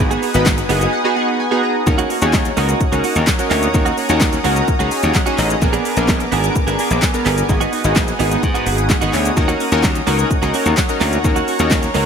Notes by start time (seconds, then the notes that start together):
Already playing: B4
0.00 G#1 B3 D#4 F#4 G#4 F#5 G#5 D#6, muted clean electric guitar stroke
0.11 B3 F#4 G#4, closed hi-hat, shaker
0.22 B3 F#4 G#4, open hi-hat, shaker
0.34 G#1 B3 D#4 F#4 B4, muted clean electric guitar stroke, closed hi-hat, shaker
0.46 G#1, muted clean electric guitar stroke, kick, snare, clap, shaker
0.58 muted clean electric guitar stroke, closed hi-hat, shaker
0.69 F#1 B3 D#4 F#4 G#4 D#5, open hi-hat, shaker
0.81 B3 F#4 G#4, closed hi-hat, shaker
0.93 F#5, muted clean electric guitar stroke
1.04 B3 D#4 F#4 G#4
1.16 B3 F#4 G#4 F#5
1.28 muted clean electric guitar stroke
1.40 G#5, muted clean electric guitar stroke
1.51 B3 D#4 F#4 G#4
1.63 A#5, muted clean electric guitar stroke
1.75 muted clean electric guitar stroke
1.86 D#2 C#4 D#4 F#4 A#4 C#5 F#5 A#5 D#6, muted clean electric guitar stroke, kick, shaker
1.98 A#3 C#4 F#4, closed hi-hat, shaker
2.10 A#3 C#4 F#4, open hi-hat, shaker
2.22 D#2 C#4 D#4 F#4 G#4, muted clean electric guitar stroke, closed hi-hat, shaker
2.33 muted clean electric guitar stroke, kick, snare, clap, shaker
2.45 muted clean electric guitar stroke, closed hi-hat, shaker
2.57 C#2 A#3 C#4 D#4 F#4 A#4, open hi-hat, shaker
2.68 A#3 C#4 F#4, closed hi-hat, shaker
2.80 muted clean electric guitar stroke, kick, shaker
2.92 C#2 A#3 C#4 D#4 F#4 A#4, closed hi-hat, shaker
3.04 A#3 C#4 F#4, open hi-hat, shaker
3.15 D#2, muted clean electric guitar stroke, closed hi-hat, shaker
3.27 muted clean electric guitar stroke, kick, snare, clap, shaker
3.39 C#4 D#4 F#4 A#4, muted clean electric guitar stroke, closed hi-hat, shaker
3.50 D2 A#3 C#4 F#4, clap, open hi-hat, shaker
3.62 muted clean electric guitar stroke, closed hi-hat, shaker
3.74 D#2 C#4 D#4 F#4 A#4, muted clean electric guitar stroke, kick, shaker
3.85 A#3 C#4 F#4, closed hi-hat, shaker
3.97 A#3 C#4 F#4, open hi-hat, shaker
4.09 D#2 C#4 D#4 F#4 A#4, closed hi-hat, shaker
4.21 muted clean electric guitar stroke, kick, snare, clap, shaker
4.33 muted clean electric guitar stroke, closed hi-hat, shaker
4.44 C#2 A#3 C#4 D#4 F#4 A#4, open hi-hat, shaker
4.56 A#3 C#4 F#4, closed hi-hat, shaker
4.68 kick, shaker
4.79 C#2 A#3 C#4 D#4 F#4 G#4, closed hi-hat, shaker
4.91 G#5, muted clean electric guitar stroke, open hi-hat, shaker
5.03 D#2, muted clean electric guitar stroke, closed hi-hat, shaker
5.15 F#5, muted clean electric guitar stroke, kick, snare, clap, shaker
5.26 A#3 C#4 D#4 F#4 G#4, closed hi-hat, shaker
5.38 A1 D#5, muted clean electric guitar stroke, clap, open hi-hat, shaker
5.50 muted clean electric guitar stroke, closed hi-hat, shaker
5.61 A#1 B3 D4 G#4 A#4 G#5 D6, muted clean electric guitar stroke, kick, shaker
5.73 B3 D4 G#4, closed hi-hat, shaker
5.85 B3 D4 G#4, open hi-hat, shaker
5.97 A#1 B3 D4 G#4 A#4, muted clean electric guitar stroke, closed hi-hat, shaker
6.08 A#1, muted clean electric guitar stroke, kick, snare, clap, shaker
6.20 muted clean electric guitar stroke, closed hi-hat, shaker
6.32 G#1 B3 D4 G#4 A#4, open hi-hat, shaker
6.43 B3 D4 G#4, closed hi-hat, shaker
6.56 kick, shaker
6.67 G#1 B3 D4 G#4 A#4, closed hi-hat, shaker
6.78 B3 D4 G#4, open hi-hat, shaker
6.90 A#1, muted clean electric guitar stroke, closed hi-hat, shaker
7.02 muted clean electric guitar stroke, kick, snare, clap, shaker
7.14 B3 D4 G#4 A#4, muted clean electric guitar stroke, closed hi-hat, shaker
7.25 G1 B3 D4 G#4, clap, open hi-hat, shaker
7.37 muted clean electric guitar stroke, closed hi-hat, shaker
7.49 G#1 B3 D#4 F#4 G#4 F#5 D#6, muted clean electric guitar stroke, kick, shaker
7.61 B3 D#4 F#4, closed hi-hat, shaker
7.72 B3 D#4 F#4, open hi-hat, shaker
7.84 G#1 B3 D#4 F#4 G#4, muted clean electric guitar stroke, closed hi-hat, shaker
7.96 muted clean electric guitar stroke, kick, snare, clap, shaker
8.08 muted clean electric guitar stroke, closed hi-hat, shaker
8.19 G#1 B3 D#4 F#4 G#4, open hi-hat, shaker
8.31 B3 D#4 F#4, closed hi-hat, shaker
8.43 G#2, muted clean electric guitar stroke, kick, shaker
8.54 B3 D#4 F#4 G#4, closed hi-hat, shaker
8.66 G#1 B3 D#4 F#4, open hi-hat, shaker
8.78 muted clean electric guitar stroke, closed hi-hat, shaker
8.90 F#5, muted clean electric guitar stroke, kick, snare, clap, shaker
9.01 G#1 B3 D#4 F#4 G#4, closed hi-hat, shaker
9.13 D2 C#5, muted clean electric guitar stroke, clap, open hi-hat, shaker
9.25 muted clean electric guitar stroke, closed hi-hat, shaker
9.37 D#2 C#4 D#4 F#4 A#4 C#5 F#5 A#5, muted clean electric guitar stroke, kick, shaker
9.48 A#3 C#4 F#4, closed hi-hat, shaker
9.60 A#3 C#4 F#4, open hi-hat, shaker
9.72 D#2 C#4 D#4 F#4 A#4, muted clean electric guitar stroke, closed hi-hat, shaker
9.83 D#2, muted clean electric guitar stroke, kick, snare, clap, shaker
9.95 muted clean electric guitar stroke, closed hi-hat, shaker
10.07 C#2 A#3 C#4 D#4 F#4 A#4, open hi-hat, shaker
10.19 A#3 C#4 F#4, closed hi-hat, shaker
10.30 muted clean electric guitar stroke, kick, shaker
10.42 C#2 A#3 C#4 D#4 F#4 A#4, closed hi-hat, shaker
10.54 A#3 C#4 F#4, open hi-hat, shaker
10.65 D#2, muted clean electric guitar stroke, closed hi-hat, shaker
10.77 muted clean electric guitar stroke, kick, snare, clap, shaker
10.89 C#4 D#4 F#4 A#4, muted clean electric guitar stroke, closed hi-hat, shaker
11.00 D2 A#3 C#4 F#4, clap, open hi-hat, shaker
11.12 muted clean electric guitar stroke, closed hi-hat, shaker
11.24 D#2 C#4 D#4 F#4 A#4, muted clean electric guitar stroke, kick, shaker
11.36 A#3 C#4 F#4, closed hi-hat, shaker
11.47 A#3 C#4 F#4, open hi-hat, shaker
11.59 D#2 C#4 D#4 F#4 A#4, closed hi-hat, shaker
11.71 muted clean electric guitar stroke, kick, snare, clap, shaker
11.83 muted clean electric guitar stroke, closed hi-hat, shaker
11.94 C#2 A#3 C#4 D#4 F#4 A#4, open hi-hat, shaker